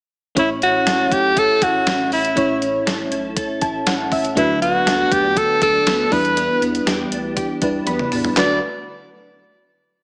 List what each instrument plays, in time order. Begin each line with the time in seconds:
0.35 analog synth bass A1, fm electric piano A2 A3 C#4 E4 C#5, clean electric guitar C#4, alto saxophone E4, kick, closed hi-hat
0.62 analog synth bass A1, clean electric guitar C#4, alto saxophone F#4, closed hi-hat
0.87 analog synth bass A1, clean electric guitar A4, snare, closed hi-hat
1.12 analog synth bass B1, clean electric guitar E4, alto saxophone G4, kick, closed hi-hat
1.37 clean electric guitar A4, alto saxophone A4, kick, closed hi-hat
1.62 analog synth bass A1, clean electric guitar E4, alto saxophone F#4, kick, closed hi-hat
1.87 analog synth bass A1, clean electric guitar C#4, snare, closed hi-hat
2.12 analog synth bass A1, clean electric guitar E4, alto saxophone E4, open hi-hat
2.25 closed hi-hat
2.35 analog synth bass A1, fm electric piano A2 A3 C#4 E4 C#5, clean electric guitar C#4, kick, closed hi-hat
2.61 analog synth bass A1, clean electric guitar C#4, closed hi-hat
2.86 analog synth bass A1, clean electric guitar A4, snare, closed hi-hat
3.12 analog synth bass B1, clean electric guitar E4, closed hi-hat
3.37 clean electric guitar A4, kick, closed hi-hat
3.61 analog synth bass A1, clean electric guitar E4, fm electric piano A5, kick, closed hi-hat
3.87 analog synth bass A1, clean electric guitar C#4, fm electric piano F#5, snare, closed hi-hat
4.11 analog synth bass A1, clean electric guitar E4, fm electric piano E5, kick, open hi-hat
4.25 closed hi-hat
4.35 analog synth bass D2, fm electric piano D3 A3 D4 F#4 B4, clean electric guitar F#3, alto saxophone E4, kick, closed hi-hat
4.62 analog synth bass D2, clean electric guitar B3, alto saxophone F#4, closed hi-hat
4.86 analog synth bass D2, clean electric guitar A4, snare, closed hi-hat
5.11 analog synth bass E2, clean electric guitar D4, alto saxophone G4, kick, closed hi-hat
5.36 clean electric guitar A4, alto saxophone A4, kick, closed hi-hat
5.62 analog synth bass D2, clean electric guitar D4, alto saxophone A4, kick, closed hi-hat
5.86 analog synth bass D2, clean electric guitar B3, snare, closed hi-hat
6.11 analog synth bass E2, fm electric piano E3 G3 D4 E4 B4, clean electric guitar B3, alto saxophone B4, kick, open hi-hat
6.25 closed hi-hat
6.37 clean electric guitar B3, closed hi-hat
6.61 analog synth bass E2, clean electric guitar B3, closed hi-hat
6.75 closed hi-hat
6.86 analog synth bass E2, clean electric guitar G4, snare, closed hi-hat
7.12 analog synth bass D2, clean electric guitar D4, closed hi-hat
7.36 clean electric guitar G4, kick, closed hi-hat
7.62 analog synth bass E2, fm electric piano G3 D4 E4 B4, clean electric guitar D4, kick, closed hi-hat
7.86 analog synth bass E2, clean electric guitar B3, fm electric piano B5, closed hi-hat, high tom
7.99 mid tom
8.12 analog synth bass E2, clean electric guitar D4, mid tom, open hi-hat
8.25 floor tom
8.36 analog synth bass D2, fm electric piano D2 A3 D4 F#4 B4, clean electric guitar F#3 B3 D4 A4, alto saxophone D5, snare, clap